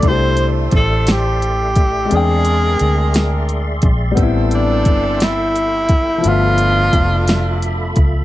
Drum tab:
HH |xxxxxx|xxxxxx|xxxxxx|xxxxxx|
SD |---o--|---o--|---o--|---o--|
BD |o-o--o|-----o|o-o--o|--o--o|